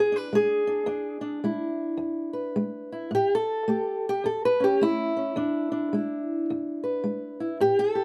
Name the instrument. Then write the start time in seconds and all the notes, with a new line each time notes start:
steel-string acoustic guitar
Already playing: E2
0.00 G#4
0.12 D4 B4
0.33 G#3 G#4
0.67 D4
0.86 E2 D4
1.21 D4
1.44 G#3 E4
1.97 E2
2.33 B4
2.56 G#3
2.92 E4
3.11 A2 G4
3.35 A4
3.68 A3 G4
4.09 G4
4.24 E2 A4
4.45 B4
4.60 C#4 G4
4.81 A3 E4
5.17 C#4
5.36 E2 D4
5.72 D4
5.93 G#3 E4
6.50 E2
6.84 B4
7.04 G#3
7.40 E4
7.60 A2 G4
7.79 A4
7.95 G4